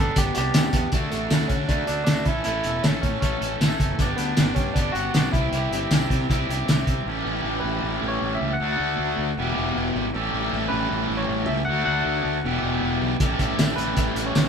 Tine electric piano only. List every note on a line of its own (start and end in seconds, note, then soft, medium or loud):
0.00 0.18 A4 loud
0.18 0.36 G4 loud
0.34 0.36 F#4 medium
0.34 0.92 G4 medium
1.10 1.50 A3 medium
1.48 1.69 C#4 medium
1.69 1.86 D4 medium
1.87 2.03 D4 medium
2.04 2.26 D4 medium
2.25 2.44 E4 medium
2.45 2.85 E4 loud
2.83 3.01 C#4 medium
3.02 3.19 C#4 medium
3.20 3.57 C#4 medium
4.16 4.53 B3 medium
4.55 4.75 C#4 medium
4.74 4.92 D4 medium
4.92 5.29 F#4 loud
5.32 6.63 E4 medium
7.60 8.11 B4 medium
8.08 8.37 C#5 medium
8.35 8.58 E5 medium
8.53 8.71 F#5 loud
8.72 9.87 F#5 medium
10.68 11.19 B4 medium
11.17 11.48 C#5 medium
11.47 11.65 E5 medium
11.65 11.84 F#5 loud
11.85 12.97 F#5 medium
13.76 14.26 B4 medium
14.26 14.49 C#5 medium